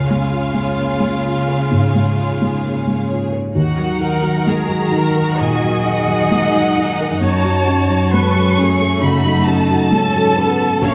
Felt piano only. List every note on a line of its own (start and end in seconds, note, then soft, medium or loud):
0.00 1.69 C#2 soft
0.11 0.48 G#3 soft
0.32 0.70 F4 soft
0.54 0.93 G#3 soft
0.78 1.02 A#3 soft
1.00 1.39 G#3 soft
1.25 1.62 F4 soft
1.48 1.85 C#5 soft
1.71 2.09 G#2 soft
1.95 2.32 G#3 soft
2.18 2.55 F4 soft
2.42 2.78 G#3 soft
2.63 2.87 A#3 soft
2.87 3.24 G#3 soft
3.11 3.48 F4 soft
3.32 3.56 C#5 soft
3.55 5.35 D#2 soft
3.78 4.15 F#3 soft
4.00 4.38 D#4 soft
4.23 4.61 F#3 soft
4.47 4.70 G#3 soft
4.69 5.07 F#3 soft
4.91 5.29 D#4 soft
5.15 5.53 A#4 soft
5.40 5.77 A#2 soft
5.63 5.99 F#3 soft
5.85 6.22 D#4 soft
6.08 6.44 F#3 soft
6.31 6.54 G#3 soft
6.54 6.90 F#3 soft
6.77 7.13 D#4 soft
7.00 7.22 A#4 soft
7.21 8.99 F#2 soft
7.45 7.81 F#3 soft
7.67 8.04 C#4 soft
7.89 8.26 F#3 soft
8.14 8.36 G#3 soft
8.35 8.71 F#3 soft
8.58 8.94 C#4 soft
8.81 9.17 A4 soft
9.02 9.38 C#3 soft
9.25 9.61 F#3 soft
9.47 9.83 C#4 soft
9.70 10.06 F#3 soft
9.92 10.15 G#3 soft
10.16 10.51 F#3 soft
10.38 10.74 C#4 soft
10.60 10.83 A4 soft
10.82 10.95 A#1 medium